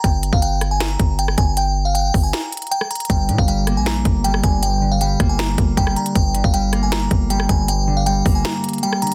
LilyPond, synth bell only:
\new Staff \with { instrumentName = "Synth bell" } { \time 4/4 \key g \phrygian \tempo 4 = 157 g''8. f''16 g''8. aes''16 bes''4 g''8 aes''8 | g''8. f''16 g''8. aes''16 bes''4 g''8 bes''8 | g''8. f''16 g''8. aes''16 bes''4 g''8 aes''8 | g''8. f''16 g''8. aes''16 bes''4 g''8 bes''8 |
g''8. f''16 g''8. aes''16 bes''4 g''8 aes''8 | g''8. f''16 g''8. aes''16 bes''4 g''8 bes''8 | }